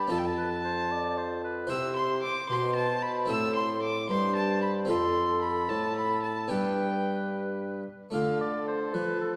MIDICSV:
0, 0, Header, 1, 5, 480
1, 0, Start_track
1, 0, Tempo, 530973
1, 102, Time_signature, 6, 3, 24, 8
1, 4422, Tempo, 538600
1, 8407, End_track
2, 0, Start_track
2, 0, Title_t, "Violin"
2, 0, Program_c, 0, 40
2, 0, Note_on_c, 0, 83, 92
2, 96, Note_off_c, 0, 83, 0
2, 103, Note_on_c, 0, 81, 87
2, 165, Note_on_c, 0, 79, 75
2, 179, Note_off_c, 0, 81, 0
2, 229, Note_on_c, 0, 81, 110
2, 242, Note_off_c, 0, 79, 0
2, 1299, Note_off_c, 0, 81, 0
2, 1536, Note_on_c, 0, 88, 112
2, 1760, Note_off_c, 0, 88, 0
2, 1774, Note_on_c, 0, 84, 102
2, 2007, Note_off_c, 0, 84, 0
2, 2013, Note_on_c, 0, 86, 106
2, 2251, Note_off_c, 0, 86, 0
2, 2258, Note_on_c, 0, 84, 108
2, 2489, Note_off_c, 0, 84, 0
2, 2494, Note_on_c, 0, 81, 110
2, 2736, Note_on_c, 0, 83, 97
2, 2750, Note_off_c, 0, 81, 0
2, 2978, Note_off_c, 0, 83, 0
2, 2984, Note_on_c, 0, 88, 120
2, 3210, Note_off_c, 0, 88, 0
2, 3215, Note_on_c, 0, 84, 99
2, 3453, Note_off_c, 0, 84, 0
2, 3461, Note_on_c, 0, 86, 105
2, 3696, Note_off_c, 0, 86, 0
2, 3705, Note_on_c, 0, 84, 117
2, 3934, Note_off_c, 0, 84, 0
2, 3940, Note_on_c, 0, 81, 108
2, 4169, Note_off_c, 0, 81, 0
2, 4174, Note_on_c, 0, 83, 97
2, 4247, Note_off_c, 0, 83, 0
2, 4420, Note_on_c, 0, 84, 107
2, 4886, Note_off_c, 0, 84, 0
2, 4891, Note_on_c, 0, 83, 94
2, 5133, Note_on_c, 0, 81, 105
2, 5147, Note_off_c, 0, 83, 0
2, 5371, Note_off_c, 0, 81, 0
2, 5376, Note_on_c, 0, 83, 109
2, 5607, Note_off_c, 0, 83, 0
2, 5612, Note_on_c, 0, 81, 89
2, 5853, Note_on_c, 0, 79, 97
2, 5866, Note_off_c, 0, 81, 0
2, 6584, Note_off_c, 0, 79, 0
2, 7317, Note_on_c, 0, 69, 71
2, 8407, Note_off_c, 0, 69, 0
2, 8407, End_track
3, 0, Start_track
3, 0, Title_t, "Oboe"
3, 0, Program_c, 1, 68
3, 0, Note_on_c, 1, 67, 64
3, 93, Note_off_c, 1, 67, 0
3, 99, Note_on_c, 1, 69, 69
3, 207, Note_off_c, 1, 69, 0
3, 342, Note_on_c, 1, 71, 78
3, 450, Note_off_c, 1, 71, 0
3, 586, Note_on_c, 1, 72, 73
3, 828, Note_on_c, 1, 74, 78
3, 841, Note_off_c, 1, 72, 0
3, 1066, Note_on_c, 1, 72, 77
3, 1079, Note_off_c, 1, 74, 0
3, 1299, Note_off_c, 1, 72, 0
3, 1304, Note_on_c, 1, 71, 81
3, 1538, Note_on_c, 1, 72, 68
3, 1552, Note_off_c, 1, 71, 0
3, 3447, Note_off_c, 1, 72, 0
3, 3704, Note_on_c, 1, 72, 77
3, 4427, Note_on_c, 1, 69, 82
3, 4440, Note_off_c, 1, 72, 0
3, 5859, Note_off_c, 1, 69, 0
3, 5865, Note_on_c, 1, 71, 63
3, 7049, Note_off_c, 1, 71, 0
3, 7315, Note_on_c, 1, 77, 80
3, 7536, Note_off_c, 1, 77, 0
3, 7559, Note_on_c, 1, 74, 87
3, 7789, Note_off_c, 1, 74, 0
3, 7797, Note_on_c, 1, 72, 74
3, 8035, Note_on_c, 1, 71, 76
3, 8048, Note_off_c, 1, 72, 0
3, 8265, Note_off_c, 1, 71, 0
3, 8270, Note_on_c, 1, 69, 64
3, 8376, Note_off_c, 1, 69, 0
3, 8407, End_track
4, 0, Start_track
4, 0, Title_t, "Harpsichord"
4, 0, Program_c, 2, 6
4, 67, Note_on_c, 2, 60, 55
4, 77, Note_on_c, 2, 65, 58
4, 89, Note_on_c, 2, 69, 55
4, 101, Note_on_c, 2, 41, 61
4, 1485, Note_off_c, 2, 60, 0
4, 1490, Note_off_c, 2, 65, 0
4, 1496, Note_off_c, 2, 69, 0
4, 1502, Note_off_c, 2, 41, 0
4, 1510, Note_on_c, 2, 72, 56
4, 1516, Note_on_c, 2, 64, 60
4, 1530, Note_on_c, 2, 67, 58
4, 1544, Note_on_c, 2, 48, 62
4, 1973, Note_off_c, 2, 48, 0
4, 2258, Note_on_c, 2, 47, 54
4, 2929, Note_off_c, 2, 72, 0
4, 2932, Note_off_c, 2, 64, 0
4, 2938, Note_off_c, 2, 67, 0
4, 2943, Note_off_c, 2, 47, 0
4, 2943, Note_on_c, 2, 60, 62
4, 2956, Note_on_c, 2, 64, 60
4, 2962, Note_on_c, 2, 69, 63
4, 2976, Note_on_c, 2, 45, 71
4, 3662, Note_off_c, 2, 45, 0
4, 3699, Note_on_c, 2, 43, 57
4, 4369, Note_off_c, 2, 60, 0
4, 4376, Note_off_c, 2, 64, 0
4, 4379, Note_off_c, 2, 69, 0
4, 4385, Note_on_c, 2, 60, 61
4, 4387, Note_off_c, 2, 43, 0
4, 4399, Note_on_c, 2, 65, 58
4, 4409, Note_on_c, 2, 69, 65
4, 4417, Note_on_c, 2, 41, 65
4, 5101, Note_off_c, 2, 41, 0
4, 5141, Note_on_c, 2, 45, 56
4, 5809, Note_off_c, 2, 60, 0
4, 5815, Note_off_c, 2, 65, 0
4, 5820, Note_off_c, 2, 69, 0
4, 5829, Note_off_c, 2, 45, 0
4, 5835, Note_on_c, 2, 59, 56
4, 5842, Note_on_c, 2, 62, 49
4, 5856, Note_on_c, 2, 67, 54
4, 5865, Note_on_c, 2, 43, 57
4, 7038, Note_off_c, 2, 43, 0
4, 7263, Note_off_c, 2, 59, 0
4, 7267, Note_off_c, 2, 62, 0
4, 7273, Note_off_c, 2, 67, 0
4, 7285, Note_on_c, 2, 57, 46
4, 7294, Note_on_c, 2, 62, 45
4, 7307, Note_on_c, 2, 65, 47
4, 7318, Note_on_c, 2, 50, 47
4, 7994, Note_off_c, 2, 50, 0
4, 8032, Note_on_c, 2, 53, 46
4, 8407, Note_off_c, 2, 53, 0
4, 8407, Note_off_c, 2, 57, 0
4, 8407, Note_off_c, 2, 62, 0
4, 8407, Note_off_c, 2, 65, 0
4, 8407, End_track
5, 0, Start_track
5, 0, Title_t, "Bassoon"
5, 0, Program_c, 3, 70
5, 104, Note_on_c, 3, 41, 76
5, 1511, Note_off_c, 3, 41, 0
5, 1541, Note_on_c, 3, 48, 79
5, 1998, Note_off_c, 3, 48, 0
5, 2260, Note_on_c, 3, 47, 84
5, 2976, Note_on_c, 3, 45, 83
5, 2990, Note_off_c, 3, 47, 0
5, 3699, Note_off_c, 3, 45, 0
5, 3706, Note_on_c, 3, 43, 83
5, 4424, Note_on_c, 3, 41, 82
5, 4437, Note_off_c, 3, 43, 0
5, 5136, Note_on_c, 3, 45, 75
5, 5149, Note_off_c, 3, 41, 0
5, 5856, Note_off_c, 3, 45, 0
5, 5862, Note_on_c, 3, 43, 71
5, 7048, Note_off_c, 3, 43, 0
5, 7313, Note_on_c, 3, 50, 66
5, 8027, Note_on_c, 3, 53, 56
5, 8041, Note_off_c, 3, 50, 0
5, 8407, Note_off_c, 3, 53, 0
5, 8407, End_track
0, 0, End_of_file